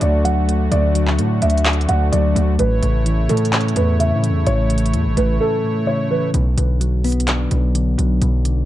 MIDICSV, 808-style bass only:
0, 0, Header, 1, 2, 480
1, 0, Start_track
1, 0, Key_signature, 2, "minor"
1, 0, Tempo, 468750
1, 733, Time_signature, 4, 2, 24, 8
1, 8860, End_track
2, 0, Start_track
2, 0, Title_t, "808-style bass"
2, 0, Program_c, 0, 38
2, 13, Note_on_c, 0, 38, 110
2, 704, Note_off_c, 0, 38, 0
2, 733, Note_on_c, 0, 38, 108
2, 1213, Note_on_c, 0, 45, 103
2, 1228, Note_off_c, 0, 38, 0
2, 1441, Note_off_c, 0, 45, 0
2, 1453, Note_on_c, 0, 38, 103
2, 1914, Note_off_c, 0, 38, 0
2, 1933, Note_on_c, 0, 38, 108
2, 2163, Note_off_c, 0, 38, 0
2, 2173, Note_on_c, 0, 38, 106
2, 2403, Note_off_c, 0, 38, 0
2, 2413, Note_on_c, 0, 38, 105
2, 2643, Note_off_c, 0, 38, 0
2, 2653, Note_on_c, 0, 33, 111
2, 2883, Note_off_c, 0, 33, 0
2, 2893, Note_on_c, 0, 33, 107
2, 3354, Note_off_c, 0, 33, 0
2, 3373, Note_on_c, 0, 45, 105
2, 3834, Note_off_c, 0, 45, 0
2, 3853, Note_on_c, 0, 40, 107
2, 4220, Note_on_c, 0, 45, 101
2, 4236, Note_off_c, 0, 40, 0
2, 4397, Note_on_c, 0, 40, 99
2, 4412, Note_off_c, 0, 45, 0
2, 4564, Note_off_c, 0, 40, 0
2, 4573, Note_on_c, 0, 33, 109
2, 5053, Note_on_c, 0, 40, 101
2, 5068, Note_off_c, 0, 33, 0
2, 5180, Note_on_c, 0, 33, 100
2, 5195, Note_off_c, 0, 40, 0
2, 5287, Note_off_c, 0, 33, 0
2, 5293, Note_on_c, 0, 33, 104
2, 5523, Note_off_c, 0, 33, 0
2, 6493, Note_on_c, 0, 35, 113
2, 6723, Note_off_c, 0, 35, 0
2, 6733, Note_on_c, 0, 35, 103
2, 7655, Note_off_c, 0, 35, 0
2, 7693, Note_on_c, 0, 35, 106
2, 8153, Note_off_c, 0, 35, 0
2, 8173, Note_on_c, 0, 35, 102
2, 8403, Note_off_c, 0, 35, 0
2, 8413, Note_on_c, 0, 35, 106
2, 8860, Note_off_c, 0, 35, 0
2, 8860, End_track
0, 0, End_of_file